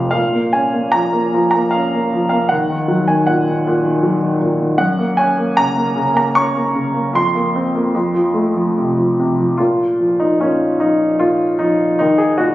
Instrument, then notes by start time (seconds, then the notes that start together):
grand piano
Already playing: F1 F2 C3 F5
0.11 A#2 F5
0.33 A#3
0.53 C#4 G#5
0.73 A#3
0.92 F3 A#5
1.13 A#3
1.34 F3
1.51 A#3 A#5
1.71 C#4 F5
1.95 A#3
2.13 F3
2.29 A#3 F5
2.49 D#2 F#5
2.70 D#3
2.88 F#3
3.07 D#3 G#5
3.27 A#2 F#5
3.48 D#3
3.67 A#2
3.85 D#3
4.03 F#3
4.21 D#3
4.41 A#2
4.60 D#3
4.78 F#2 F#5
4.98 A#3
5.17 C#4 G#5
5.38 A#3
5.57 C#3 A#5
5.77 A#3
5.96 C#3
6.14 A#3 A#5
6.35 C#4 C#6
6.55 A#3
6.75 C#3
6.94 A#3
7.13 F2 C6
7.35 A#3
7.56 C4
7.75 A#3
7.95 F2
8.15 F3
8.34 A3
8.56 F3
8.77 C3
8.98 F3
9.19 C3
9.40 F3
9.58 A#2 F4
10.00 F3
10.20 D#4
10.40 A#2 C#4
10.80 F3 D#4
11.19 A#2 F4
11.59 F3 D#4
11.99 D#2 D#4
12.18 G#4
12.38 A#2 F#4